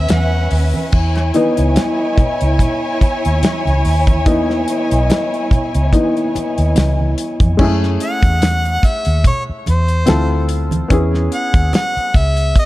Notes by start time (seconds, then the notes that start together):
Already playing: B3 C#4 E4 G#4 B4 E5
0.09 E2, snare, closed hi-hat, high conga
0.14 F#5
0.51 D#2, open hi-hat
0.74 high conga
0.92 E2 E4 C#5 G#5, kick, crash, muted conga
1.16 snare, closed hi-hat
1.34 E3 B3 D#4, closed hi-hat
1.57 C#2, closed hi-hat
1.76 snare, closed hi-hat, high conga
2.18 muted fingered electric bass stroke, kick, closed hi-hat, low conga
2.41 C#2, closed hi-hat
2.59 kick, closed hi-hat, muted conga, low conga
3.01 muted fingered electric bass stroke, kick, closed hi-hat, muted conga
3.25 D#2, closed hi-hat
3.43 snare, closed hi-hat, high conga
3.65 C#2, closed hi-hat, high conga
3.85 D#2, open hi-hat
4.07 kick, closed hi-hat, high conga
4.26 E2 E3 B3 D#4, kick, closed hi-hat, muted conga
4.50 snare
4.68 closed hi-hat
4.91 B1, closed hi-hat
5.10 snare, closed hi-hat, high conga
5.34 closed hi-hat
5.51 muted fingered electric bass stroke, kick, closed hi-hat, low conga
5.74 C#2, closed hi-hat
5.93 E3 B3 D#4, kick, closed hi-hat
6.17 closed hi-hat
6.35 muted fingered electric bass stroke, closed hi-hat, muted conga
6.58 D#2, closed hi-hat
6.76 C#2, snare, closed hi-hat, high conga
6.99 high conga
7.18 closed hi-hat
7.40 F2, kick, closed hi-hat, high conga
7.57 F#2 G#3 C#4 E4, kick, crash, muted conga
7.62 A3 G#4
7.83 snare
8.00 F#5, closed hi-hat
8.23 E2, kick, closed hi-hat
8.42 snare, closed hi-hat, high conga
8.65 closed hi-hat
8.83 E5, muted fingered electric bass stroke, kick, closed hi-hat
9.05 D#2, closed hi-hat
9.24 C#5, kick, closed hi-hat, low conga
9.49 muted fingered electric bass stroke
9.66 E2 C5, closed hi-hat, muted conga
9.88 closed hi-hat
10.06 D2 C4 E4 F4 A4, snare, closed hi-hat, high conga
10.49 closed hi-hat
10.71 closed hi-hat, high conga
10.88 E2 B3 C#4 E4, kick, closed hi-hat, muted conga
10.93 G#4
11.14 snare
11.32 F#5, closed hi-hat
11.54 D#2, kick, closed hi-hat
11.73 F#5, snare, closed hi-hat, high conga
11.97 muted fingered electric bass stroke, closed hi-hat
12.14 C#2 E5, kick, closed hi-hat
12.37 closed hi-hat
12.56 D#5, kick, closed hi-hat